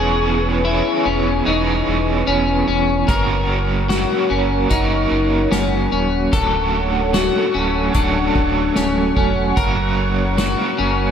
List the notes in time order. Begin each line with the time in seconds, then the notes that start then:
Already playing: E1 E3 B3 C#4 G#4 B4 C#5 G#5 C#6
0.65 E3 B3 C#4 E4 G#4
1.05 E1 C#4
1.45 E1 E3 B3 D#4
1.50 C#4 G#4
1.88 E1
2.27 E1 C#4
2.68 E1 C#4
3.08 F#1 F#2 C#3 F#3 A#3 C#4 A#4 C#5 F#5, kick, closed hi-hat
3.89 F#3 A#3 C#4 F#4 A#4, snare, closed hi-hat
4.30 F#1 C#4
4.69 F#1 F#3 A#3 D#4, kick, closed hi-hat
4.74 C#4 A#4
5.11 F#1
5.51 F#1 C#4, snare, closed hi-hat
5.92 D#1 C#4
6.33 D1 D3 F#3 A3 C#4 A4 C#5 C#6, kick, closed hi-hat
7.13 F#3 A3 C#4 F#4 A4, snare, closed hi-hat
7.54 D1 C#4
7.93 D1 F#3 A3 D4, kick, closed hi-hat
7.98 C#4 A4
8.35 D1, kick
8.76 D1 C#4, snare, closed hi-hat
9.16 E1 C#4, kick
9.57 F#1 F#2 C#3 F#3 A#3 C#4 A#4 C#5, kick, closed hi-hat
10.37 F#3 A#3 C#4 F#4 A#4, snare, closed hi-hat
10.78 F#1 C#4